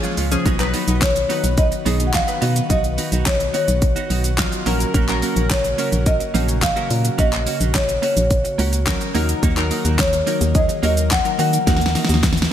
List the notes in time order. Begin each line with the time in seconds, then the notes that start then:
Already playing: C#3 F3 A#3 C#4 F4 G#4
0.03 G#3 C#4 F4, closed hi-hat, shaker
0.17 C#2 G#3 C#4 F4, open hi-hat, shaker
0.31 F3 C#4 G#4, muted clean electric guitar stroke, closed hi-hat, shaker
0.45 B1 D#3 B3 D#4 F#4, kick, closed hi-hat, shaker
0.59 F#3 D#4 B4, muted clean electric guitar stroke, clap, closed hi-hat, shaker
0.73 B3 D#4 F#4, open hi-hat, shaker
0.87 B1 B3 D#4 F#4, closed hi-hat, shaker
1.02 C#5, kick, snare, clap, closed hi-hat, shaker
1.15 muted clean electric guitar stroke, closed hi-hat, shaker
1.29 F#3 B3 D#4 F#4 B4, open hi-hat, shaker
1.44 B1, muted clean electric guitar stroke, closed hi-hat, shaker
1.58 F#3 D#4 B4 D#5, kick, closed hi-hat, shaker
1.72 muted clean electric guitar stroke, closed hi-hat, shaker
1.85 B1 F#3 B3 D#4 F#4 G#4, open hi-hat, shaker
2.00 muted clean electric guitar stroke, closed hi-hat, shaker
2.07 F#5
2.14 F5, kick, snare, clap, closed hi-hat, shaker
2.28 F#3 D#4 B4, muted clean electric guitar stroke, closed hi-hat, shaker
2.42 B2 B3 D#4 F#4, open hi-hat, shaker
2.56 muted clean electric guitar stroke, closed hi-hat, shaker
2.70 B1 B3 D#4 F#4 D#5, kick, closed hi-hat, shaker
2.84 muted clean electric guitar stroke, closed hi-hat, shaker
2.98 B3 D#4 F#4, open hi-hat, shaker
3.12 B1 B3 D#4 F#4, closed hi-hat, shaker
3.26 C#5, kick, snare, clap, closed hi-hat, shaker
3.40 muted clean electric guitar stroke, closed hi-hat, shaker
3.54 B3 D#4 F#4 C#5, open hi-hat, shaker
3.68 B1, muted clean electric guitar stroke, closed hi-hat, shaker
3.82 muted clean electric guitar stroke, kick, closed hi-hat, shaker
3.96 B3 D#4 F#4, closed hi-hat, shaker
4.10 B1 B3 D#4 F#4, open hi-hat, shaker
4.24 muted clean electric guitar stroke, closed hi-hat, shaker
4.38 F#3 D#4 F4, kick, snare, clap, closed hi-hat, shaker
4.52 muted clean electric guitar stroke, closed hi-hat, shaker
4.66 A#1 C#3 F#3 A#3 C#4 F#4 A#4, open hi-hat, shaker
4.80 muted clean electric guitar stroke, closed hi-hat, shaker
4.94 A#1 A#3 C#4 F#4, kick, closed hi-hat, shaker
5.08 F#3 C#4 A#4, muted clean electric guitar stroke, clap, closed hi-hat, shaker
5.22 A#3 C#4 F#4, open hi-hat, shaker
5.36 A#1 A#3 C#4 F#4, closed hi-hat, shaker
5.50 C#5, kick, snare, clap, closed hi-hat, shaker
5.64 muted clean electric guitar stroke, closed hi-hat, shaker
5.78 F#3 A#3 C#4 F#4 A#4, open hi-hat, shaker
5.92 A#1, muted clean electric guitar stroke, closed hi-hat, shaker
6.06 F#3 C#4 A#4 D#5, kick, closed hi-hat, shaker
6.20 muted clean electric guitar stroke, closed hi-hat, shaker
6.34 A#1 F#3 A#3 C#4 D#4 F#4, open hi-hat, shaker
6.48 muted clean electric guitar stroke, closed hi-hat, shaker
6.62 F5, muted clean electric guitar stroke, kick, snare, clap, closed hi-hat, shaker
6.76 F#3 A#3 C#4 F#4 A#4, closed hi-hat, shaker
6.90 A#2, muted clean electric guitar stroke, open hi-hat, shaker
7.04 muted clean electric guitar stroke, closed hi-hat, shaker
7.18 A#1 A#3 C#4 F#4 D#5, kick, closed hi-hat, shaker
7.32 muted clean electric guitar stroke, clap, closed hi-hat, shaker
7.46 A#3 C#4 F#4, open hi-hat, shaker
7.60 A#1 A#3 C#4 F#4, closed hi-hat, shaker
7.75 C#5, kick, snare, clap, closed hi-hat, shaker
7.88 muted clean electric guitar stroke, closed hi-hat, shaker
8.02 A#3 C#4 F#4 C#5, open hi-hat, shaker
8.16 A#1, muted clean electric guitar stroke, closed hi-hat, shaker
8.31 kick, closed hi-hat, shaker
8.44 muted clean electric guitar stroke, closed hi-hat, shaker
8.58 C#2 A#3 C#4 F#4, open hi-hat, shaker
8.73 muted clean electric guitar stroke, closed hi-hat, shaker
8.87 F#3 C#4 A#4, muted clean electric guitar stroke, kick, snare, clap, closed hi-hat, shaker
9.01 muted clean electric guitar stroke, closed hi-hat, shaker
9.14 D#2 D#3 F#3 A#3 D#4 F#4 A#4, open hi-hat, shaker
9.29 muted clean electric guitar stroke, closed hi-hat, shaker
9.42 D#2 A#3 D#4 F#4, kick, closed hi-hat, shaker
9.57 F#3 D#4 A#4, clap, closed hi-hat, shaker
9.70 A#3 D#4 F#4, open hi-hat, shaker
9.85 D#2 A#3 D#4 F#4, closed hi-hat, shaker
9.99 C#5, kick, snare, clap, closed hi-hat, shaker
10.13 muted clean electric guitar stroke, closed hi-hat, shaker
10.27 F#3 A#3 D#4 F#4 A#4, open hi-hat, shaker
10.41 D#2, muted clean electric guitar stroke, closed hi-hat, shaker
10.55 F#3 D#4 G#4 D#5, kick, closed hi-hat, shaker
10.69 muted clean electric guitar stroke, closed hi-hat, shaker
10.83 D#2 F#3 A#3 D#4 F#4 A#4 D#5, open hi-hat, shaker
10.97 muted clean electric guitar stroke, closed hi-hat, shaker
11.11 F#5, muted clean electric guitar stroke, kick, snare, clap, closed hi-hat, shaker
11.25 F#3 D#4 A#4, muted clean electric guitar stroke, closed hi-hat, shaker
11.39 D#3 A#3 D#4 F#4 F#5, open hi-hat, shaker
11.53 muted clean electric guitar stroke, closed hi-hat, shaker
11.67 D#2 A#3 D#4 F#4, kick, snare, closed hi-hat, shaker
11.77 snare
11.81 muted clean electric guitar stroke, closed hi-hat, shaker
11.86 snare
11.95 A#3 D#4 F#4, snare, open hi-hat, shaker
12.05 snare
12.09 D#2 A#3 D#4 F#4, closed hi-hat, shaker
12.14 snare
12.23 kick, snare, clap, closed hi-hat, shaker
12.33 snare
12.37 muted clean electric guitar stroke, closed hi-hat, shaker
12.42 snare